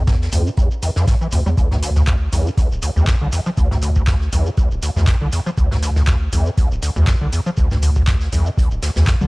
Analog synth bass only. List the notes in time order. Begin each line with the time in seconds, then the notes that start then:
Already playing: E2
0.33 D2
1.33 D2
1.46 E2
1.58 D2
1.71 D2
2.33 C2
2.71 D1
2.96 D2
3.21 C2
3.58 D2
3.71 D2
4.33 C2
4.71 D1
4.96 D2
5.21 C2
5.58 D2
5.71 D2
6.33 C2
6.71 D1
6.96 D2
7.21 C2
7.58 D2
7.71 D2
8.32 C2
8.71 D1
8.96 D2
9.21 D2